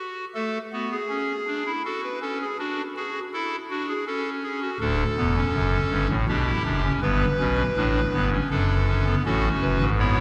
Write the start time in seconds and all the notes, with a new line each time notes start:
Already playing: F#4
0.35 A3 A4
0.73 B3 F#4
0.91 G#4
1.09 C#4
1.47 D4
1.66 E4
1.85 F#4 A4
2.03 B4
2.22 C#4 A4
2.41 G#4
2.59 D4 F#4
2.96 F#4 G#4
3.33 E4 A4
3.70 D4 F#4
3.89 G#4
4.07 C#4 A4
4.43 G#4
4.62 F#4
4.80 D1 D2 D4 A4
5.17 E1 E2 B3
5.36 C#4
5.54 F#1 F#2
5.91 G1 G2
6.09 A1 A2
6.28 B1 B2 D4 G4
6.46 E4
6.65 F#1 F#2 D4
6.84 C#4
7.02 G1 G2 B3 B4
7.40 B1 B2 C#4
7.76 A1 A2 D4
8.13 G1 G2 B3
8.32 C#4
8.50 F#1 F#2 D4 A4
8.88 C#4
9.06 B3
9.25 A1 A2 C#4 F#4 A4
9.62 F#1 F#2 B4
9.80 G#1 G#2
9.99 B3 E4 C#5